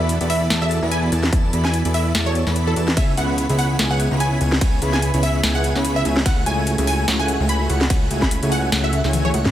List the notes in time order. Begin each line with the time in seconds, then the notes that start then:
Already playing: E2 E3 B3 E4 F#4 A4 D5 E5 B5
0.09 closed hi-hat
0.20 E2 E3 B3 E4 F#4 A4 D5 B5, closed hi-hat
0.30 E5, open hi-hat
0.50 E2 B3 E4 A4 D5 A5, snare, closed hi-hat
0.61 E3 B3 F#4 A4 D5 E5
0.71 closed hi-hat
0.82 E2 B3 E4 A4 D5 B5
0.91 G#5, closed hi-hat
1.02 E3 B3 F#4 A4 D5
1.12 E2 B3 E4 A4 D5 A5, closed hi-hat
1.23 snare
1.33 E2 B3 E4 A4 D5 A5, kick, closed hi-hat
1.52 E2 E3 B3 E4 F#4 A4 D5 B5, closed hi-hat
1.65 G#5, snare
1.74 closed hi-hat
1.84 E2 E3 B3 E4 F#4 A4 D5 B5, closed hi-hat
1.94 E5, open hi-hat
2.15 E2 B3 E4 A4 D5 A5, snare, closed hi-hat
2.25 E3 B3 F#4 A4 C#5 D5
2.34 E3 B3 F#4 A4 D5, closed hi-hat
2.47 E2 B3 E4 A4 D5 B5, snare
2.56 closed hi-hat
2.66 E3 B3 F#4 A4 D5
2.76 E2 E3 B3 E4 F#4 A4 D5 A5, closed hi-hat
2.88 snare
2.97 C#2 B3 E4 G#4 C#5 E5 G#5, kick, closed hi-hat, ride
3.17 C#2 C#3 B3 C#4 E4 G#4 B4 C#5 E5 F#5 B5, closed hi-hat
3.38 closed hi-hat
3.49 C#2 C#3 B3 C#4 E4 G#4 B4 C#5 E5 B5, closed hi-hat
3.59 F#5, open hi-hat
3.79 C#2 B3 E4 G#4 C#5 G#5, snare, closed hi-hat, ride
3.90 C#3 C#4 G#4 B4 E5 F#5
4.00 closed hi-hat
4.11 C#2 B3 E4 G#4 C#5 B5
4.20 G#5, closed hi-hat
4.31 C#3 C#4 G#4 B4 E5
4.41 C#2 B3 E4 G#4 C#5 G#5, closed hi-hat
4.52 snare
4.61 C#2 B3 E4 G#4 C#5 G#5, kick, closed hi-hat, ride
4.81 C#2 C#3 B3 C#4 E4 G#4 B4 C#5 E5 B5, closed hi-hat
4.93 G#5, snare
5.02 closed hi-hat
5.13 C#2 C#3 B3 C#4 E4 G#4 B4 C#5 E5 B5, closed hi-hat
5.23 E5, open hi-hat
5.43 C#2 B3 E4 G#4 C#5 G#5, snare, closed hi-hat, ride
5.54 C#3 C#4 G#4 B4 E5 F#5
5.64 closed hi-hat
5.75 C#2 B3 E4 G#4 C#5 B5, snare
5.85 closed hi-hat
5.95 C#3 C#4 G#4 B4 E5
6.05 C#2 B3 E4 G#4 C#5 G#5, closed hi-hat
6.17 snare
6.26 C#2 A3 E4 F#4 C#5 F#5, kick, closed hi-hat, ride
6.45 C#2 C#3 A3 C#4 E4 F#4 G#4 A4 C#5 E5 G#5, closed hi-hat
6.67 closed hi-hat
6.77 C#2 C#3 A3 C#4 E4 F#4 G#4 A4 C#5 E5 G#5, closed hi-hat
6.87 G#5, open hi-hat
7.08 C#2 A3 E4 F#4 C#5 F#5, snare, closed hi-hat, ride
7.18 C#3 C#4 G#4 A4 E5 G#5
7.28 closed hi-hat
7.40 C#2 A3 E4 F#4 C#5 G#5
7.49 B5, closed hi-hat
7.59 C#3 C#4 G#4 A4 E5
7.70 C#2 A3 E4 F#4 C#5 F#5, closed hi-hat
7.81 snare
7.90 C#2 A3 E4 F#4 C#5 F#5, kick, closed hi-hat, ride
8.10 C#2 C#3 A3 C#4 E4 F#4 G#4 A4 C#5 E5 G#5, closed hi-hat
8.22 B5, kick, snare
8.31 closed hi-hat
8.42 C#2 C#3 A3 C#4 E4 F#4 G#4 A4 C#5 E5 G#5, closed hi-hat
8.52 F#5, open hi-hat
8.72 C#2 A3 E4 F#4 C#5 F#5, snare, closed hi-hat, ride
8.83 C#3 C#4 G#4 A4 E5
8.92 C#3 C#4 G#4 A4 E5, closed hi-hat
9.04 C#2 A3 E4 F#4 C#5 G#5, snare
9.13 closed hi-hat, high tom
9.24 C#3 C#4 G#4 A4 C#5 E5, high tom
9.33 C#2 C#3 A3 C#4 E4 F#4 G#4 A4 C#5 E5 F#5, closed hi-hat
9.45 snare, mid tom